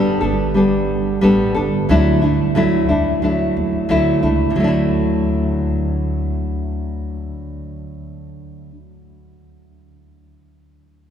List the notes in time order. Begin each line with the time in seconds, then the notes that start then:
Already playing: G3 B3 D4 A4
0.21 G1 B3 D4 A4
0.54 G3 B3 D4 A4
1.21 A1 G3 B3 D4 A4
1.54 G1 B3 D4 A4
1.89 D2 D3 F#3 A3 D4 E4
2.22 A3 D4 E4
2.55 D3 F#3 A3 D4 E4
2.89 E2 A3 D4 E4
3.22 F#3 A3 D4 E4
3.57 E2
3.89 D2 D3 F#3 A3 D4 E4
4.23 C#2 A3 D4 E4
4.50 D3
4.55 D2 F#3
4.60 A3
4.64 D4 E4